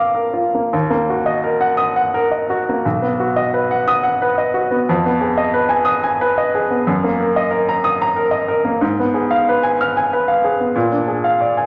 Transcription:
upright piano
Already playing: A#2 F3 A#3 F4 A#4 D5 F5 D6
0.15 A#4
0.34 F4
0.55 A#3
0.73 D#2
0.90 A#3
1.10 F#4
1.26 D#5
1.44 A#4
1.61 F#5
1.77 D#6
1.96 F#5
2.14 A#4
2.32 D#5
2.50 F#4
2.69 A#3
2.85 B1
3.02 B3
3.20 F#4
3.36 D#5
3.54 B4
3.71 F#5
3.88 D#6
4.03 F#5
4.22 B4
4.38 D#5
4.54 F#4
4.71 B3
4.89 F2
5.05 B3
5.21 G#4
5.38 D#5
5.54 B4
5.69 G#5
5.85 D#6
6.03 G#5
6.21 B4
6.38 D#5
6.55 G#4
6.70 B3
6.87 F#2
7.04 A#3
7.20 A#4
7.36 D#5
7.51 A#4
7.69 A#5
7.84 D#6
8.02 A#5
8.16 A#4
8.31 D#5
8.48 A#4
8.65 A#3
8.81 G#2
9.00 B3
9.14 G#4
9.31 F5
9.49 B4
9.63 G#5
9.81 F6
9.97 G#5
10.13 B4
10.28 F5
10.44 G#4
10.60 B3
10.76 A#2
10.92 D4
11.08 G#4
11.24 F5
11.41 D5
11.57 G#5

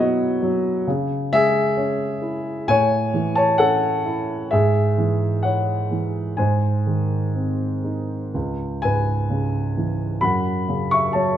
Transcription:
grand piano
Already playing: B2 F#3 B3 D#4 E4 B4 C#5 D#5
0.00 F#4
0.42 F#3
0.87 C#3
1.32 G#3 G#4 E5
1.77 C#4
2.22 E4
2.68 A2 C#5 G#5
3.14 E3
3.35 C#5 A5
3.58 C#4 A4 F#5
4.06 E4
4.51 G#2 G#4 E5
4.98 E3
5.43 E4 C#5 F#5
5.91 E3
6.37 G#2 C5 G#5
6.87 D#3
7.35 C4
7.84 D#4
8.34 C#2
8.82 G#2 B4 G#5
9.30 C#3
9.77 E3
10.21 F#2 F#5 B5
10.69 C#3
10.91 E5 C#6
11.13 F#3 C#5 A5

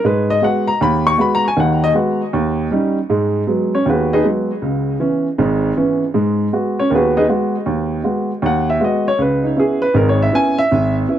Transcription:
upright piano
0.04 G#2 G#3 B4
0.30 D#5
0.42 G#3 B3 F#4 F#5
0.68 A#5
0.81 D#2 B5
1.07 C#6
1.18 G#3 B3 F#4 B5
1.35 A#5
1.48 G#5
1.57 D#2 D#3 F#5
1.84 D#5
1.94 G#3 B3 F#4
2.33 D#2
2.71 G3 C#4 D#4
3.10 G#2 G#3
3.47 F#3 G#3 B3
3.74 C#4 C#5
3.86 D#2 G#4 B4
3.90 B3 F#4
4.13 D#4 G#4 B4 D#5
4.23 F#3 G#3 B3
4.62 C#2 C#3
5.00 E3 B3 C#4
5.38 G#1 G#2
5.77 E3 B3 C#4
6.14 G#2 G#3
6.53 G#3 B3 F#4
6.80 C#4 C#5
6.90 D#2 A#4
6.95 B3 F#4 G#4 B4
7.17 D#4 G#4 B4 D#5
7.29 G#3 B3 F#4
7.66 D#2
8.04 G#3 B3 F#4
8.42 D#2 F#5
8.70 E5
8.80 G#3 B3 F#4
8.84 D#5
9.08 C#5
9.18 C#2 B4
9.44 D#4
9.56 B3 C#4 E4 G#4
9.82 B4
9.94 G#1 G#2 A#4
10.09 C#5
10.22 E5
10.32 B3 C#4 E4 G#5
10.59 E5
10.71 G#1
11.08 B3 C#4 E4

